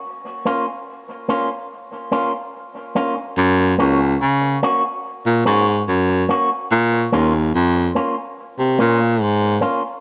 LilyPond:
<<
  \new Staff \with { instrumentName = "Clean electric guitar" } { \time 4/4 \key bes \minor \tempo 4 = 72 r8 <bes des' f'>8 r8 <bes des' f'>8 r8 <bes des' f'>8 r8 <bes des' f'>8 | r8 <bes des' ges'>8 r8 <bes des' ges'>8 r8 <bes des' ges'>8 r8 <bes des' ges'>8 | r8 <bes des' f'>8 r8 <bes des' f'>8 r8 <bes des' f'>8 r8 <bes des' f'>8 | }
  \new Staff \with { instrumentName = "Baritone saxophone" } { \clef bass \time 4/4 \key bes \minor r1 | ges,8 des,8 des8 r8. bes,16 aes,8 ges,8 r8 | bes,8 ees,8 f,8 r8. c16 bes,8 aes,8 r8 | }
>>